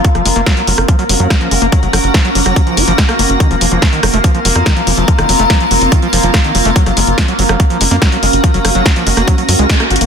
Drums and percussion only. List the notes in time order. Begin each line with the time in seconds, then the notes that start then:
0.05 kick, closed hi-hat
0.15 cross-stick, closed hi-hat
0.26 open hi-hat
0.36 closed hi-hat
0.46 kick, snare, closed hi-hat
0.57 closed hi-hat
0.67 open hi-hat
0.78 cross-stick, closed hi-hat
0.88 kick, closed hi-hat
0.99 closed hi-hat
1.09 open hi-hat
1.20 closed hi-hat
1.30 kick, cross-stick, snare, closed hi-hat
1.41 closed hi-hat
1.51 open hi-hat
1.62 closed hi-hat
1.72 kick, closed hi-hat
1.83 closed hi-hat
1.93 cross-stick, open hi-hat
2.04 closed hi-hat
2.14 kick, snare, closed hi-hat
2.25 closed hi-hat
2.35 open hi-hat
2.46 cross-stick, closed hi-hat
2.56 kick, closed hi-hat
2.67 closed hi-hat
2.77 open hi-hat
2.88 closed hi-hat
2.98 kick, snare, closed hi-hat
3.09 cross-stick, closed hi-hat
3.19 open hi-hat
3.30 closed hi-hat
3.40 kick, cross-stick, closed hi-hat
3.51 closed hi-hat
3.61 open hi-hat
3.72 closed hi-hat
3.82 kick, snare, closed hi-hat
3.93 closed hi-hat
4.03 cross-stick, open hi-hat
4.14 closed hi-hat
4.24 kick, closed hi-hat
4.35 closed hi-hat
4.45 open hi-hat
4.56 cross-stick, closed hi-hat
4.66 kick, snare, closed hi-hat
4.77 closed hi-hat
4.87 open hi-hat
4.98 closed hi-hat
5.08 kick, closed hi-hat
5.18 cross-stick, closed hi-hat
5.29 open hi-hat
5.39 closed hi-hat
5.50 kick, snare, closed hi-hat
5.60 closed hi-hat
5.71 open hi-hat
5.81 closed hi-hat
5.92 kick, closed hi-hat
6.02 closed hi-hat
6.13 open hi-hat
6.23 closed hi-hat
6.34 kick, cross-stick, snare, closed hi-hat
6.44 closed hi-hat
6.55 open hi-hat
6.65 closed hi-hat
6.76 kick, closed hi-hat
6.86 cross-stick, closed hi-hat
6.97 open hi-hat
7.07 closed hi-hat
7.18 kick, snare, closed hi-hat
7.28 closed hi-hat
7.39 open hi-hat
7.49 cross-stick, closed hi-hat
7.60 kick, closed hi-hat
7.70 closed hi-hat
7.81 open hi-hat
7.91 closed hi-hat
8.02 kick, cross-stick, snare, closed hi-hat
8.12 closed hi-hat
8.23 open hi-hat
8.33 closed hi-hat
8.44 kick, closed hi-hat
8.54 closed hi-hat
8.65 cross-stick, open hi-hat
8.75 closed hi-hat
8.86 kick, snare, closed hi-hat
8.96 closed hi-hat
9.07 open hi-hat
9.17 cross-stick, closed hi-hat
9.28 kick, closed hi-hat
9.38 closed hi-hat
9.49 open hi-hat
9.59 closed hi-hat
9.70 kick, snare, closed hi-hat
9.80 cross-stick, closed hi-hat
9.91 closed hi-hat
9.96 closed hi-hat
10.01 closed hi-hat